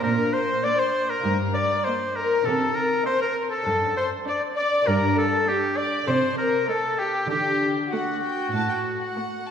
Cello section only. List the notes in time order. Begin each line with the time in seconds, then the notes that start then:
0.04 A#2
1.24 G2
2.46 C3
3.66 F#2
4.87 G2
6.08 C3
7.30 D3
8.53 A2